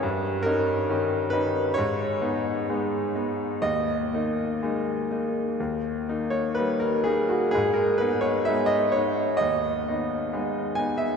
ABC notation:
X:1
M:4/4
L:1/16
Q:1/4=64
K:D#phr
V:1 name="Grand piano"
z2 A4 B2 c8 | d8- d3 c B A G F | G A B c e d c2 d6 g e |]
V:2 name="Grand piano"
=G,,2 [CD]2 [D,CD]2 [CD]2 ^G,,2 [B,D]2 [G,B,D]2 [B,D]2 | D,,2 [A,D]2 [G,A,D]2 [A,D]2 D,,2 [A,D]2 [=G,A,D]2 [A,D]2 | G,,2 [B,D]2 [G,B,D]2 [B,D]2 D,,2 [B,D]2 [G,B,D]2 [B,D]2 |]